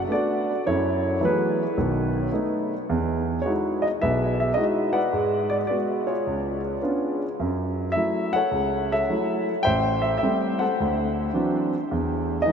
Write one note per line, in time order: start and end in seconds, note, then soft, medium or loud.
0.00 0.11 F#4 medium
0.00 0.11 A4 medium
0.08 0.50 A3 soft
0.08 0.50 B3 soft
0.08 0.50 D4 medium
0.08 0.69 D5 medium
0.13 0.64 F#4 medium
0.13 0.64 A4 medium
0.67 1.15 F#2 medium
0.67 1.20 E4 medium
0.67 1.75 A4 medium
0.67 1.18 C#5 medium
1.21 1.62 E3 soft
1.21 1.62 F#3 soft
1.21 1.62 A3 soft
1.21 1.62 B3 soft
1.21 1.23 E4 medium
1.21 1.76 E4 soft
1.21 1.75 G#4 soft
1.25 2.31 B4 medium
1.77 2.26 B1 medium
1.77 2.26 D#3 medium
2.32 2.73 A3 medium
2.32 2.73 B3 soft
2.32 2.73 D#4 medium
2.89 3.38 E2 medium
3.42 3.85 G#3 soft
3.42 3.51 C#5 medium
3.46 3.86 D#4 soft
3.46 3.86 E4 soft
3.46 3.86 F#4 medium
3.82 3.87 D#5 medium
4.02 4.51 B1 medium
4.02 5.10 G#4 medium
4.02 4.92 B4 medium
4.02 4.39 E5 medium
4.40 4.56 E5 medium
4.54 4.97 G#3 soft
4.54 4.97 D#4 soft
4.54 4.97 E4 soft
4.54 4.98 F#4 medium
4.54 4.63 D#5 medium
4.93 6.02 B4 medium
4.93 5.48 D5 medium
4.93 5.46 F#5 medium
5.13 5.62 G#2 medium
5.13 5.62 G#3 medium
5.50 5.55 D5 medium
5.67 6.10 G#3 soft
5.67 6.10 B3 soft
5.67 5.76 D5 medium
5.71 6.10 F#4 medium
6.06 6.81 F4 soft
6.06 7.17 G#4 soft
6.06 6.60 C#5 medium
6.27 6.75 C#2 medium
6.82 7.23 B3 soft
6.82 7.23 C#4 soft
6.82 7.23 D4 soft
6.82 7.23 F4 medium
7.40 7.89 F#2 medium
7.92 8.37 F#3 soft
7.92 8.36 A3 soft
7.92 8.37 E4 medium
7.92 8.34 E5 medium
8.33 8.91 A4 medium
8.33 8.91 C#5 medium
8.33 8.92 F#5 medium
8.51 9.01 C#2 medium
8.92 9.62 A4 medium
8.92 9.62 C#5 soft
8.92 9.44 E5 medium
9.09 9.50 F#3 soft
9.09 9.50 A3 soft
9.09 9.50 E4 medium
9.63 10.15 A1 medium
9.63 10.59 C5 medium
9.63 10.00 E5 medium
9.63 10.00 G5 medium
10.02 10.16 E5 medium
10.18 10.60 E5 medium
10.23 10.63 G3 medium
10.23 10.63 A3 soft
10.23 10.63 C4 medium
10.59 11.69 A4 medium
10.59 11.68 C5 medium
10.59 11.68 F#5 medium
10.80 11.28 D2 medium
11.34 11.74 E3 soft
11.34 11.74 F#3 medium
11.34 11.75 C4 soft
11.34 11.75 D4 medium
11.91 12.39 E2 medium
12.42 12.52 E3 medium
12.42 12.52 D#4 medium
12.42 12.51 D#5 medium
12.46 12.52 G#3 medium